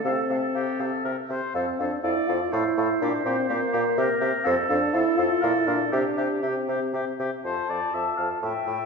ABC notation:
X:1
M:3/4
L:1/8
Q:1/4=122
K:F
V:1 name="Flute"
f f f f e e | f f f f f f | f f f f e e | f f f f f f |
e e e e e e | a4 g2 |]
V:2 name="Clarinet"
A4- A z | z2 d2 c2- | c4 B2 | A6 |
G4- G z | A A A A A A |]
V:3 name="Oboe"
A A G A B c | A A A A A A | G G G G G G | A A A A B B |
G G G G G G | c d e f e2 |]
V:4 name="French horn"
C4 z2 | C D E F E2 | D C B,3 z | C D E F E D |
D2 C3 z | F F F F F F |]
V:5 name="Bassoon" clef=bass
C, C, C, C, C, C, | F,, F,, F,, F,, A,, A,, | B,, B,, B,, B,, C, C, | F,, F,, F,, F,, B,, B,, |
C, C, C, C, C, C, | F,, F,, F,, F,, A,, A,, |]